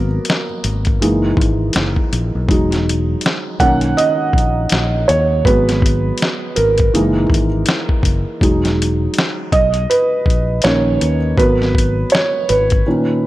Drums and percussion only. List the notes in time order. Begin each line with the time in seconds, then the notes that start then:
0.25 closed hi-hat
0.30 snare
0.64 closed hi-hat
0.85 kick, closed hi-hat
1.02 closed hi-hat
1.37 kick
1.41 closed hi-hat
1.73 snare, closed hi-hat
1.96 kick
2.13 closed hi-hat
2.49 kick, closed hi-hat
2.72 snare, closed hi-hat
2.89 closed hi-hat
3.21 closed hi-hat
3.26 snare
3.60 kick, closed hi-hat
3.81 closed hi-hat
3.98 closed hi-hat
4.33 kick
4.38 closed hi-hat
4.70 snare, closed hi-hat
5.09 closed hi-hat
5.45 kick, closed hi-hat
5.69 snare, closed hi-hat
5.82 kick, closed hi-hat
6.18 closed hi-hat
6.22 snare
6.56 closed hi-hat
6.78 kick, closed hi-hat
6.95 closed hi-hat
7.30 kick
7.34 closed hi-hat
7.66 snare, closed hi-hat
7.89 kick
8.03 kick, closed hi-hat
8.41 kick, closed hi-hat
8.65 snare, closed hi-hat
8.82 closed hi-hat
9.14 closed hi-hat
9.19 snare
9.52 kick, closed hi-hat
9.74 closed hi-hat
9.91 closed hi-hat
10.26 kick
10.30 closed hi-hat
10.62 snare, closed hi-hat
11.01 closed hi-hat
11.38 kick, closed hi-hat
11.62 snare
11.75 kick, closed hi-hat
12.10 closed hi-hat
12.15 snare
12.49 closed hi-hat
12.70 kick, closed hi-hat